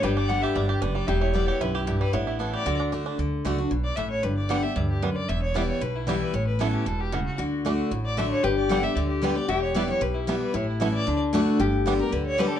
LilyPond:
<<
  \new Staff \with { instrumentName = "Fiddle" } { \time 4/4 \key d \major \tempo 4 = 228 b'8 d''8 fis''8 e''8 d''8 g'8 b'8 d''8 | e''8 cis''8 d''8 cis''8 b'8 e'8 g'8 b'8 | cis''8 e'8 a'8 d''4 r4. | r2 r8 d''8 e''8 cis''8 |
b'8 d''8 fis''8 e''8 d''8 g'8 b'8 d''8 | e''8 cis''8 d''8 cis''8 b'8 e'8 g'8 b'8 | cis''8 b'8 a'8 g'8 a'8 g'8 fis'8 fis'8 | r2 r8 d''8 e''8 cis''8 |
b'8 d''8 fis''8 e''8 d''8 g'8 b'8 d''8 | e''8 cis''8 d''8 cis''8 b'8 e'8 g'8 b'8 | cis''8 e'8 a'8 d''4 r4. | r4. bes'8 b'8 cis''8 \tuplet 3/2 { b'8 a'8 d''8 } | }
  \new Staff \with { instrumentName = "Resonator guitar played with a steel bar" } { \time 4/4 \key d \major g'1 | g'1 | e'2 fis'4. r8 | r1 |
r1 | r1 | r1 | fis'1 |
g'1 | g'1 | e'2 d'4. r8 | g'1 | }
  \new Staff \with { instrumentName = "Five-string banjo" } { \time 4/4 \key d \major g8 d'8 b8 g'8 d'8 g'8 d'8 g8 | g8 e'8 b8 g'8 e'8 g'8 e'8 g8 | b8 e'8 b8 g'8 d'8 d'8 d'8 d'8 | r4 <a d'>8 r4. <a d'>8 r8 |
r4 <g b d'>8 r4. <g b d'>8 r8 | r4 <g b e'>8 r4. <g b e'>8 r8 | r4 <a b e'>8 r4. <a b e'>8 r8 | r4 <a d'>8 r4. <a d'>8 r8 |
r4 <g b d'>8 r4. <g b d'>8 r8 | r4 <g b e'>8 r4. <g b e'>8 r8 | r4 <a b e'>8 r4. <a d'>8 r8 | r4 <g b d'>8 r4. <g b d'>8 r8 | }
  \new Staff \with { instrumentName = "Steel-string acoustic guitar" } { \clef bass \time 4/4 \key d \major << { r4 <d g b g'>4 r2 | r4 <e g b e'>4 r2 | r4 <e b cis' e'>4 r4 <d a d' fis'>4 | r4 <d a d' fis'>8 <d' fis'>8 r2 |
r4 <d g b g'>8 <b g'>8 r2 | r4 <e g b e'>4 r4 <e g b e'>4 | r4 <e b cis' e'>4 r2 | r4 <d a d' fis'>4 r4 <d a d' fis'>4 |
r4 <d g b g'>8 <b g'>8 r4 <d g b g'>8 <b g'>8 | r4 <e g b e'>8 <b e'>8 r4 <e g b e'>4 | r4 <e b cis' e'>4 r4 <d a d' fis'>4 | r4 <d g b g'>8 <b g'>8 r4 <d g b g'>4 | } \\ { g,2 g,4 fis,4 | e,2 fis,4 g,4 | a,2 d2 | d2 b,4 a,4 |
g,2 g,4 fis,4 | e,2 b,2 | a,2 b,4 cis4 | d2 a,2 |
g,2 d2 | e,2 b,2 | a,2 d2 | g,2 d2 | } >> }
  \new Staff \with { instrumentName = "Upright bass" } { \clef bass \time 4/4 \key d \major g,,2 g,,4 fis,,4 | e,,2 b,,2 | a,,2 d,2 | d,4 cis,4 b,,4 a,,4 |
g,,2 d,2 | e,,2 b,,2 | a,,2 e,,2 | d,2 a,,2 |
g,,2 d,2 | e,,2 b,,2 | a,,2 d,2 | g,,2 d,2 | }
>>